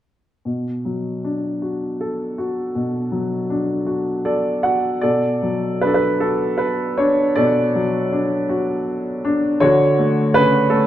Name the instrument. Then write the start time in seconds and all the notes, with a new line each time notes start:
upright piano
0.45 B2
0.85 F#3
1.24 D4
1.62 F#4
2.01 A4
2.38 F#4
2.75 B2
3.12 F#3
3.50 D4
3.87 F#4
4.25 A4 D5
4.63 F#4 F#5
5.01 B2 A4 D5
5.42 F#3
5.81 D4 B4
5.87 A4
5.94 B4
6.20 F#4 A4
6.58 B4
6.97 D4 C#5
7.35 B2 A4 D5
7.75 F#3
8.12 D4
8.49 F#4
9.25 D4
9.60 D3 F#4 C#5
9.99 A3
10.34 C#3 B4
10.70 A3 A4